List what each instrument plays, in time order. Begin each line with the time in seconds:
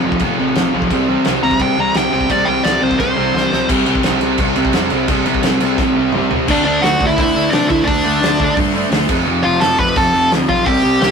0.03 picked electric bass A1, overdriven electric guitar F2 C3 F3, distorted electric guitar A2 A3 C4 F4
0.12 kick
0.20 picked electric bass A1, overdriven electric guitar F2 C3 F3, distorted electric guitar A2 A3 C4 F4, kick, crash
0.37 picked electric bass A1, overdriven electric guitar F2 C3 F3, distorted electric guitar A2 A3 C4 F4
0.55 picked electric bass A1, overdriven electric guitar F2 C3 F3, distorted electric guitar A2 A3 C4 F4, snare, crash
0.73 picked electric bass B1, overdriven electric guitar F2 C3 F3, distorted electric guitar A2 A3 C4 F4
0.82 kick
0.90 picked electric bass C2, overdriven electric guitar C3 G3 C4, distorted electric guitar E3 E4, kick, crash
1.08 overdriven electric guitar C3 G3 C4, distorted electric guitar E3 E4
1.25 picked electric bass C2, overdriven electric guitar C3 G3 C4, distorted electric guitar E3 E4, snare, crash
1.42 picked electric bass C2, overdriven electric guitar C3 G3 C4, distorted electric guitar E3 E4, lead electric guitar A#5
1.51 kick
1.59 picked electric bass C2, overdriven electric guitar C3 G3 C4, distorted electric guitar E3 E4, lead electric guitar G5, kick, crash
1.76 picked electric bass C2, overdriven electric guitar C3 G3 C4, distorted electric guitar E3 E4, lead electric guitar A#5
1.94 picked electric bass C2, overdriven electric guitar C3 G3 C4, distorted electric guitar E3 E4, lead electric guitar G5, snare, crash
2.11 picked electric bass C2, overdriven electric guitar C3 G3 C4, distorted electric guitar E3 E4, lead electric guitar G5
2.21 kick
2.29 picked electric bass C2, overdriven electric guitar C3 G3 C4, distorted electric guitar E3 E4, lead electric guitar D5, kick, crash
2.45 picked electric bass C2, overdriven electric guitar C3 G3 C4, distorted electric guitar E3 E4, lead electric guitar G5
2.63 picked electric bass C2, overdriven electric guitar C3 G3 C4, distorted electric guitar E3 E4, lead electric guitar D5, snare, crash
2.81 picked electric bass C2, overdriven electric guitar C3 G3 C4, distorted electric guitar E3 E4, lead electric guitar C5
2.91 kick
2.99 picked electric bass C2, overdriven electric guitar C3 G3 C4, distorted electric guitar E3 E4, lead electric guitar C5, kick, crash
3.17 picked electric bass C2, overdriven electric guitar C3 G3 C4, distorted electric guitar E3 E4
3.34 picked electric bass C2, overdriven electric guitar C3 G3 C4, distorted electric guitar E3 E4, snare
3.50 picked electric bass C2, overdriven electric guitar C3 G3 C4, distorted electric guitar E3 E4, snare
3.69 picked electric bass C2, overdriven electric guitar C3 G3 C4, distorted electric guitar E4, kick, crash
3.86 picked electric bass C2, overdriven electric guitar C3 G3 C4, crash
3.95 kick
4.03 picked electric bass C2, overdriven electric guitar C3 G3 C4, snare, crash
4.21 picked electric bass C2, overdriven electric guitar C3 G3 C4, distorted electric guitar E4, crash
4.38 picked electric bass C2, overdriven electric guitar C3 G3 C4, kick, crash
4.56 picked electric bass C2, overdriven electric guitar C3 G3 C4, crash
4.65 kick
4.73 picked electric bass F2, overdriven electric guitar C3 G3 C4, distorted electric guitar E4, snare, crash
4.90 picked electric bass C2, overdriven electric guitar C3 G3 C4, crash
5.08 picked electric bass C2, overdriven electric guitar C3 G3 C4, distorted electric guitar E4, kick, crash
5.26 picked electric bass A1, overdriven electric guitar C3 G3 C4, crash
5.34 kick
5.43 picked electric bass C2, overdriven electric guitar C3 G3 C4, snare, crash
5.60 picked electric bass C2, overdriven electric guitar C3 G3 C4, distorted electric guitar E4, crash
5.78 picked electric bass A2, overdriven electric guitar C3 G3 C4, kick, snare
5.97 picked electric bass C2, overdriven electric guitar C3 G3 C4
6.12 picked electric bass C2, overdriven electric guitar C3 G3 C4, distorted electric guitar E4, mid tom
6.30 overdriven electric guitar C3 G3 C4, picked electric bass C3, floor tom
6.48 picked electric bass D2, overdriven electric guitar D3 A3 D4, lead electric guitar D4 D5, kick, crash
6.64 picked electric bass D2, overdriven electric guitar D3 A3 D4, lead electric guitar D4 D5
6.81 picked electric bass D2, overdriven electric guitar D3 A3 D4, lead electric guitar F#4 F#5, snare, open hi-hat
6.99 picked electric bass D2, overdriven electric guitar D3 A3 D4, kick
7.07 lead electric guitar E4 E5
7.17 picked electric bass D2, overdriven electric guitar D3 A3 D4, kick, open hi-hat
7.34 picked electric bass D2, overdriven electric guitar D3 A3 D4
7.50 picked electric bass C3, overdriven electric guitar D3 A3 D4, lead electric guitar D4 D5, snare, open hi-hat
7.67 picked electric bass D2, overdriven electric guitar D3 A3 D4, lead electric guitar E4 E5, kick
7.84 overdriven electric guitar D3 A3 D4, lead electric guitar D4 D5, kick
7.88 picked electric bass D2, open hi-hat
8.03 picked electric bass D2, overdriven electric guitar D3 A3 D4
8.21 picked electric bass D2, overdriven electric guitar D3 A3 D4, snare, open hi-hat
8.39 overdriven electric guitar D3 A3 D4, kick
8.56 picked electric bass G2, overdriven electric guitar D3 A3 D4, kick, open hi-hat
8.74 overdriven electric guitar D3 A3 D4
8.90 picked electric bass D2, overdriven electric guitar D3 A3 D4, snare, open hi-hat
9.08 picked electric bass F1, overdriven electric guitar F2 C3 F3, kick, crash
9.26 picked electric bass F1, overdriven electric guitar F2 C3 F3
9.44 picked electric bass F1, overdriven electric guitar F2 C3 F3, lead electric guitar F4 F5
9.60 picked electric bass F1, overdriven electric guitar F2 C3 F3, lead electric guitar A4 A5, snare, open hi-hat
9.78 picked electric bass F1, overdriven electric guitar F2 C3 F3, lead electric guitar B4 B5, kick
9.96 picked electric bass F1, overdriven electric guitar F2 C3 F3, lead electric guitar A4 A5, kick, open hi-hat
10.14 picked electric bass F1, overdriven electric guitar F2 C3 F3
10.31 picked electric bass D2, overdriven electric guitar F2 C3 F3, snare, open hi-hat
10.49 picked electric bass B1, overdriven electric guitar F2 C3 F3, lead electric guitar F4 F5, kick
10.66 picked electric bass C2, overdriven electric guitar C3 G3 C4, lead electric guitar G4 G5, kick, open hi-hat
10.83 picked electric bass C2, overdriven electric guitar C3 G3 C4
11.00 picked electric bass C2, overdriven electric guitar C3 G3 C4, snare, open hi-hat